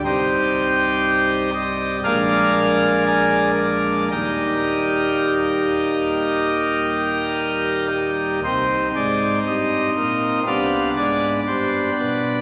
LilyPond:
<<
  \new Staff \with { instrumentName = "Pipe organ" } { \time 4/4 \key ees \major \tempo 4 = 58 <ees' g' c''>4. ees''8 <bes' d'' f''>4 <aes' bes' d''>8 d''8 | <g' bes' ees''>2.~ <g' bes' ees''>8 r8 | \key c \minor <c c''>8 <aes, d''>8 <g, ees''>8 <bes, ees''>8 <c f''>8 <aes, d''>8 <g, c''>8 <b, b'>8 | }
  \new Staff \with { instrumentName = "Pipe organ" } { \clef bass \time 4/4 \key ees \major << { <c, g>2 <bes, aes bes d'>2 | <ees, g bes ees'>1 | \key c \minor <c' ees'>2 <b d'>2 | } \\ { c,,2 bes,,2 | ees,,1 | c,8 r4. c,8 r4. | } >> }
>>